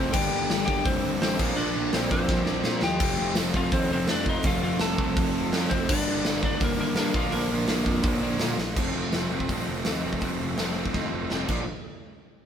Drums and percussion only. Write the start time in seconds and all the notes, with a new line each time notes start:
0.13 kick, crash
0.50 snare, open hi-hat
0.68 kick
0.85 kick, open hi-hat
1.22 snare, open hi-hat
1.39 kick, crash
1.93 snare, open hi-hat
2.11 kick
2.28 kick, snare
2.46 snare
2.64 snare
2.82 snare
3.00 kick, splash, crash
3.35 snare, open hi-hat
3.54 kick
3.72 kick, open hi-hat
4.08 snare, open hi-hat
4.26 kick
4.43 kick, open hi-hat
4.80 snare, open hi-hat
4.98 kick
5.17 kick, open hi-hat
5.53 snare, open hi-hat
5.71 kick
5.89 kick, crash
6.25 snare, open hi-hat
6.43 kick
6.61 kick, open hi-hat
6.96 snare, open hi-hat
7.14 kick
7.32 open hi-hat
7.68 snare, open hi-hat
7.86 kick
8.03 kick, open hi-hat
8.40 snare, open hi-hat
8.58 snare
8.76 kick, crash
9.13 snare, open hi-hat
9.40 kick
9.49 kick, open hi-hat
9.85 snare, open hi-hat
10.13 kick
10.21 kick, open hi-hat
10.58 snare, open hi-hat
10.86 kick
10.93 kick, snare
11.30 snare
11.48 kick, crash